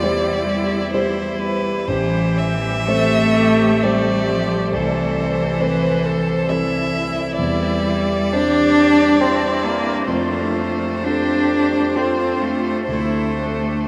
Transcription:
Already playing: E2 G3 D5
0.02 G3 E4 G4 C5
0.94 G3 G4 C5
1.40 B4
1.87 A1 E3 G4 C5
2.39 E5
2.88 A3 C4 G4 A4 C5
3.38 G4
3.83 G3 C4 G4 C5 D5
4.29 F3
4.73 C2 E3 A4 C5
5.60 C4 A4 B4 C5
6.05 A4
6.49 C4 E4 A4 C5 E5
7.38 E2 G3 D5
8.33 C4 D4 G4 C5
8.78 G4
9.20 C4 E4 G4 C5
9.65 A#3
10.07 F2 A3 F4 C5
11.05 C4 D4 F4 G4 A4
11.95 C4 F4 A4
12.42 A3
12.87 D2 A3 E4 C5
13.38 D4

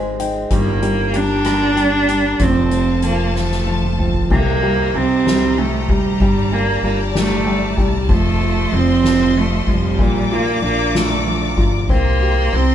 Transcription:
Already playing: G#1 D#3 G#3 C4 D#4 G#4 C5
0.19 C4 D#4 G5, closed hi-hat
0.50 G1 D#3 G3 A#3 G4 A#4 G5 A#5, kick, closed hi-hat
0.82 G3 A#3, closed hi-hat
1.13 G3 D4, closed hi-hat
1.45 G3 A#3, cross-stick, closed hi-hat
1.76 G3 G4, closed hi-hat
2.09 G3, closed hi-hat
2.39 F1 F3 A3 C4 F4 A4 C5 A5, kick, closed hi-hat
2.71 F3 A3, closed hi-hat
3.02 F3 A#3 C4, closed hi-hat
3.35 F3 A3, snare
3.51 snare
3.67 F3 F4
3.83 mid tom
3.98 F3 C4, mid tom
4.14 floor tom
4.30 C2 C3 A#3 G4 C5 D#5 A#5, kick, crash
4.63 G3, ride
4.94 C2 C3 C4, ride
5.25 G3, snare, ride
5.58 C3 A3, ride
5.89 D2 G3, kick, ride
6.20 G1 G3 G4 D5 A5, kick, ride
6.52 G3 A#3, ride
6.83 G1 G3 A#3, ride
7.14 G3 A3, snare, ride
7.46 G3, ride
7.77 C2 G3, kick, ride
8.09 F1 F3 A3 F4 D#5 C6, kick, ride
8.41 F3, ride
8.72 F1 F3 C4, ride
9.03 F3, snare, ride
9.35 F3 A3, ride
9.67 F1 F3 G3, kick, ride
9.99 A#1 A#2 D5 A#5 D6, kick
10.31 A#3 F4, ride
10.62 A#1 A#3 D4, ride
10.93 A3 F4, snare, ride
11.26 F3, ride
11.57 G1 F4, kick, ride
11.89 C2 A#3 C4 G4 D#5 A#5 C6, kick
12.21 G4, ride
12.52 C2 C4, ride

